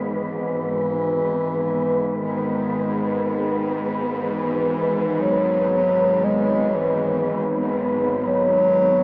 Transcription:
Already playing: synth drone G#1 G#2, synth texture B3 B4
0.06 bass clarinet E3
2.15 bass clarinet D#3
4.20 bass clarinet E3
5.21 bass clarinet F#3
6.25 bass clarinet G#3
6.74 bass clarinet E3
8.26 bass clarinet F#3

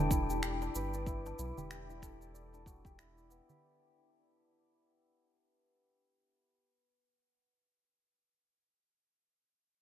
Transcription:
Already playing: sub bass E1, santur D4 E4 G4 A4 B4 D5, synth texture D4 D5
0.11 santur E4, kick, shaker
0.29 santur G4, shaker
0.43 santur G4, finger snap, shaker
0.62 santur D4, darbuka tek, shaker
0.75 sub bass G1, santur B4, shaker
0.94 santur D5, shaker
1.06 santur E4, kick, shaker
1.26 santur D4, darbuka tek, shaker
1.38 sub bass B1, santur E4, darbuka ka, shaker
1.57 sub bass E1, santur G4, darbuka dum, shaker
1.70 santur G4, finger snap, shaker
1.89 santur E4, shaker
2.02 santur A4, finger snap, kick, darbuka tek, shaker
2.21 santur D5, darbuka ka, shaker
2.34 santur D5, shaker
2.53 santur D4, darbuka ka, shaker
2.66 santur F#4, kick, darbuka tek, shaker
2.85 santur G4, kick, darbuka ka, shaker
2.98 santur E4, finger snap, shaker
3.17 santur D5, shaker
3.30 santur B3, darbuka ka, shaker
3.49 santur G4, darbuka tek, darbuka dum, shaker

